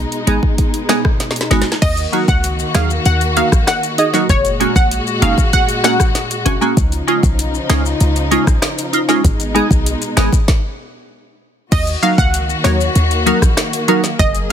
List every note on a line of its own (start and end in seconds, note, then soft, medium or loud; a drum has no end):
0.00 1.80 B2 medium
0.00 1.79 G#3 medium
0.00 1.78 D#4 medium
0.12 closed hi-hat soft
0.27 0.40 G#1 medium
0.27 0.40 G#3 medium
0.27 0.40 B3 medium
0.27 0.40 D#4 medium
0.27 0.40 G#4 loud
0.27 closed hi-hat medium
0.43 kick medium
0.58 kick medium
0.58 closed hi-hat medium
0.74 closed hi-hat medium
0.89 1.02 G#3 medium
0.89 1.02 B3 medium
0.89 1.02 D#4 medium
0.89 1.02 G#4 loud
0.89 cross-stick medium
0.89 snare loud
0.89 closed hi-hat medium
1.05 kick medium
1.05 cross-stick loud
1.20 snare medium
1.20 closed hi-hat medium
1.31 snare medium
1.36 closed hi-hat medium
1.41 snare medium
1.51 1.63 G#1 medium
1.51 1.63 G#3 medium
1.51 1.64 B3 medium
1.51 1.64 D#4 medium
1.51 1.64 F#4 loud
1.51 snare medium
1.51 closed hi-hat medium
1.62 snare medium
1.72 snare medium
1.82 2.07 D#2 loud
1.82 4.27 D#3 medium
1.82 4.27 A#3 medium
1.82 4.27 F#4 medium
1.82 1.93 D#5 loud
1.82 kick loud
1.82 closed hi-hat medium
1.82 crash medium
1.82 maracas medium
1.97 closed hi-hat soft
1.97 maracas medium
2.12 2.25 F#3 medium
2.12 2.25 A#3 medium
2.12 2.26 D#4 medium
2.12 2.26 F#4 medium
2.12 closed hi-hat medium
2.28 2.65 C#2 loud
2.28 2.40 F#5 medium
2.28 kick loud
2.28 maracas medium
2.44 closed hi-hat medium
2.44 maracas medium
2.59 maracas medium
2.74 2.99 D#2 loud
2.74 2.87 F#3 medium
2.74 2.87 A#3 medium
2.74 2.87 D#4 medium
2.74 2.88 G#4 medium
2.74 2.86 F5 medium
2.74 cross-stick medium
2.74 snare loud
2.74 closed hi-hat medium
2.74 maracas medium
2.90 maracas medium
3.06 3.42 D#2 medium
3.06 3.17 F#5 medium
3.06 closed hi-hat medium
3.06 maracas medium
3.21 closed hi-hat soft
3.21 maracas medium
3.36 3.49 F#3 medium
3.36 3.49 A#3 medium
3.36 3.49 D#4 medium
3.36 3.49 F#4 medium
3.36 3.48 F5 medium
3.36 closed hi-hat medium
3.36 maracas medium
3.52 3.65 A#1 medium
3.52 kick medium
3.52 cross-stick loud
3.52 maracas medium
3.67 3.79 F#5 medium
3.67 cross-stick medium
3.67 snare loud
3.67 closed hi-hat medium
3.67 maracas medium
3.83 closed hi-hat medium
3.83 maracas medium
3.98 4.05 D#4 medium
3.98 4.05 G#4 medium
3.98 4.10 D#5 medium
3.98 closed hi-hat medium
3.98 maracas soft
4.13 4.26 F#3 medium
4.13 4.26 A#3 medium
4.13 4.27 D#4 medium
4.13 4.27 F#4 medium
4.13 snare medium
4.13 maracas medium
4.29 4.66 F#1 loud
4.29 6.75 A#2 medium
4.29 6.75 G#3 medium
4.29 6.75 F#4 medium
4.29 4.41 C#5 loud
4.29 kick loud
4.29 closed hi-hat medium
4.29 maracas medium
4.45 closed hi-hat soft
4.45 maracas medium
4.60 4.73 G#3 medium
4.60 4.73 A#3 medium
4.60 4.73 C#4 medium
4.60 4.73 F#4 medium
4.60 closed hi-hat medium
4.76 5.00 A#1 medium
4.76 4.87 F#5 medium
4.76 kick loud
4.76 maracas medium
4.91 closed hi-hat medium
4.91 maracas medium
5.07 maracas medium
5.22 5.35 F#1 loud
5.22 5.34 G#3 medium
5.22 5.35 A#3 medium
5.22 5.35 C#4 medium
5.22 5.35 D#4 medium
5.22 5.34 F5 medium
5.22 closed hi-hat medium
5.22 maracas medium
5.38 kick loud
5.38 maracas medium
5.53 5.65 F#5 medium
5.53 kick medium
5.53 closed hi-hat medium
5.53 maracas medium
5.69 closed hi-hat medium
5.69 maracas medium
5.84 5.96 G#3 medium
5.84 5.97 A#3 medium
5.84 5.97 C#4 medium
5.84 5.97 F#4 medium
5.84 5.96 F#5 medium
5.84 cross-stick medium
5.84 snare loud
5.84 closed hi-hat medium
5.84 maracas medium
6.00 kick medium
6.00 cross-stick loud
6.00 maracas medium
6.15 snare medium
6.15 closed hi-hat medium
6.15 maracas medium
6.31 closed hi-hat medium
6.31 maracas medium
6.45 6.58 F#1 loud
6.45 6.52 C#4 medium
6.45 6.53 F#4 loud
6.45 closed hi-hat medium
6.45 high timbale medium
6.45 maracas soft
6.61 6.74 G#3 medium
6.61 6.74 A#3 medium
6.61 6.74 C#4 medium
6.61 6.74 F#4 medium
6.61 maracas medium
6.77 7.01 C#2 loud
6.77 9.22 C#3 medium
6.77 9.22 F3 medium
6.77 9.22 D#4 medium
6.77 kick loud
6.77 closed hi-hat medium
6.77 maracas medium
6.92 closed hi-hat soft
6.92 maracas medium
7.07 7.20 G#3 medium
7.07 7.20 C#4 medium
7.07 7.20 D#4 medium
7.07 7.21 F4 loud
7.07 closed hi-hat medium
7.23 7.60 B1 loud
7.23 kick medium
7.23 maracas medium
7.39 closed hi-hat medium
7.39 maracas medium
7.55 maracas medium
7.69 7.94 C#2 loud
7.69 7.82 G#3 medium
7.69 7.82 C#4 medium
7.69 7.82 D#4 medium
7.69 7.83 F4 loud
7.69 cross-stick medium
7.69 snare loud
7.69 closed hi-hat medium
7.69 maracas medium
7.86 maracas medium
8.00 8.37 C#2 medium
8.00 closed hi-hat medium
8.00 maracas medium
8.16 closed hi-hat medium
8.16 maracas medium
8.31 8.44 G#3 medium
8.31 8.44 C#4 medium
8.31 8.44 D#4 medium
8.31 8.44 F4 loud
8.31 closed hi-hat medium
8.31 maracas medium
8.47 8.59 A#1 medium
8.47 kick medium
8.47 cross-stick loud
8.47 maracas medium
8.62 cross-stick medium
8.62 snare loud
8.62 closed hi-hat medium
8.62 maracas medium
8.78 closed hi-hat medium
8.78 maracas medium
8.93 8.99 D#4 medium
8.93 9.00 F4 loud
8.93 closed hi-hat medium
8.93 maracas soft
9.08 9.21 G#3 medium
9.08 9.21 C#4 medium
9.08 9.21 D#4 medium
9.08 9.22 F4 medium
9.08 snare medium
9.08 maracas medium
9.24 9.61 G#1 loud
9.24 10.47 B2 medium
9.24 10.47 G#3 medium
9.24 10.47 D#4 medium
9.24 kick loud
9.24 closed hi-hat medium
9.24 maracas medium
9.40 closed hi-hat soft
9.40 maracas medium
9.55 9.67 G#3 medium
9.55 9.68 B3 medium
9.55 9.68 D#4 medium
9.55 9.68 G#4 loud
9.55 closed hi-hat medium
9.71 9.95 B1 medium
9.71 kick medium
9.71 maracas medium
9.86 closed hi-hat medium
9.86 maracas medium
10.02 closed hi-hat soft
10.02 maracas medium
10.17 10.30 G#1 loud
10.17 10.29 G#3 medium
10.17 10.29 B3 medium
10.17 10.30 D#4 medium
10.17 10.30 G#4 loud
10.17 cross-stick medium
10.17 snare loud
10.17 closed hi-hat medium
10.17 maracas medium
10.33 kick loud
10.33 maracas medium
10.48 kick loud
10.48 snare medium
11.72 11.96 D#2 loud
11.72 14.17 D#3 medium
11.72 14.52 A#3 medium
11.72 14.17 F#4 medium
11.72 11.83 D#5 loud
11.72 kick loud
11.72 closed hi-hat medium
11.72 crash loud
11.72 maracas medium
11.87 closed hi-hat soft
11.87 maracas medium
12.02 12.15 F#3 medium
12.02 12.15 A#3 medium
12.02 12.15 D#4 medium
12.02 12.15 F#4 medium
12.02 12.16 A#4 medium
12.02 12.14 F5 medium
12.02 closed hi-hat medium
12.02 maracas soft
12.18 12.55 C#2 loud
12.18 12.41 F#5 medium
12.18 kick medium
12.18 maracas medium
12.34 closed hi-hat medium
12.34 maracas medium
12.50 maracas medium
12.64 12.89 D#2 loud
12.64 12.77 F#3 medium
12.64 12.77 A#3 medium
12.64 12.77 D#4 medium
12.64 12.77 F#4 medium
12.64 12.77 A#4 medium
12.64 12.87 C#5 medium
12.64 cross-stick medium
12.64 snare loud
12.64 closed hi-hat medium
12.64 maracas medium
12.81 maracas medium
12.95 13.32 D#2 loud
12.95 closed hi-hat medium
12.95 maracas medium
13.11 closed hi-hat medium
13.11 maracas medium
13.26 13.39 F#3 medium
13.26 13.39 A#3 medium
13.26 13.39 D#4 medium
13.26 13.39 F#4 medium
13.26 13.39 A#4 loud
13.26 closed hi-hat medium
13.26 maracas medium
13.42 13.54 A#1 medium
13.42 kick medium
13.42 cross-stick loud
13.42 maracas medium
13.57 cross-stick medium
13.57 snare loud
13.57 closed hi-hat medium
13.57 maracas medium
13.73 closed hi-hat medium
13.73 maracas medium
13.88 14.01 F#3 medium
13.88 14.01 A#3 medium
13.88 14.01 D#4 medium
13.88 14.01 F#4 medium
13.88 14.01 A#4 loud
13.88 closed hi-hat medium
14.04 snare medium
14.04 maracas medium
14.19 14.52 F#1 loud
14.19 14.52 F#3 medium
14.19 14.52 G#4 medium
14.19 14.31 D#5 loud
14.19 kick loud
14.19 closed hi-hat medium
14.19 maracas medium
14.35 closed hi-hat soft
14.35 maracas medium